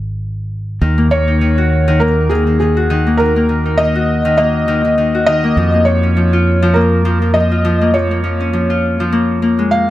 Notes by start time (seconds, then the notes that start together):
Already playing: G#1
0.81 D#2 D#3
0.98 A#3
1.11 C#5
1.28 D#4
1.41 D#3
1.58 F#4
1.88 D#3
2.00 A#3 A#4
2.29 D#3 G#4
2.47 D#3
2.60 D#3 G#4
2.77 F#4
2.90 D#3
3.07 A#3
3.17 D#3 A#4
3.36 A#3
3.49 D#3
3.66 D#4
3.78 D#3 D#5
3.95 F#4
4.25 D#3
4.38 A#3 D#5
4.68 D#3
4.85 D#3
4.98 D#3
5.15 F#4
5.26 D#3 D#5
5.44 A#3
5.57 F2 F3
5.74 A#3
5.85 F3 C#5
6.03 C#4
6.17 F3
6.33 F4
6.62 F3
6.74 A#3 A#4
7.05 F3
7.22 F3
7.34 F3 D#5
7.52 F4
7.65 F3
7.81 A#3
7.94 F3 C#5
8.11 A#3
8.24 F3
8.40 C#4
8.53 F3
8.70 F4
9.00 F3
9.12 A#3
9.42 A#3
9.59 G#3
9.71 A#3 F5